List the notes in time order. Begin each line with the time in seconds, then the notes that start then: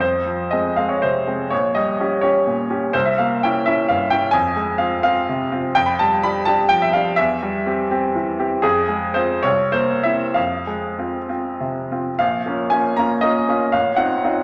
Already playing: F2
0.00 C5
0.26 F3
0.51 G#3 C4 D#5
0.76 G#3 C4 F5
0.89 C#5
1.02 C3 C5
1.27 G#3 C4
1.50 A#1 C#5
1.75 G3 D#5
2.00 C#4 G4
2.21 C#4 G4 C#5
2.47 A#2
2.70 C#4 G4
2.93 C2 C5
3.06 E5
3.18 A#3 F5
3.43 C#4 E4 G5
3.66 C#4 E4 E5
3.88 G2 F5
4.10 C#4 E4 G5
4.31 F2 G#5
4.56 G#3
4.78 C4 F4 F5
5.03 C4 F4 F5
5.29 C3
5.52 C4 F4
5.75 F2 G5
5.86 B5
5.99 G3 A5
6.23 D4 G4 B5
6.45 D4 G4 A5
6.69 F3 G5
6.82 E5
6.93 D4 G4 F5
7.16 E2 E5
7.43 G3
7.66 C4 G4
7.91 C4 G4
8.15 E3
8.39 C4 G4
8.62 F2 G#4
8.89 G#3
9.14 C4 F4 C5
9.43 C2 C#5
9.72 A#3 C5
10.03 C4 E4 E5
10.34 F2 F5
10.67 G#3
10.98 C4 F4
11.29 C4 F4
11.60 C3
11.92 C4 F4
12.19 A#1 F5
12.46 A#3 C#4 F4
12.70 A#3 C#4 F4 G#5
12.96 A#3 C#4 F4 A#5
13.21 A#3 C#4 F4 D#5
13.49 A#3 C#4 F4
13.72 A1 F5
13.96 C4 D#4 F4 F#5
14.24 C4 D#4 F4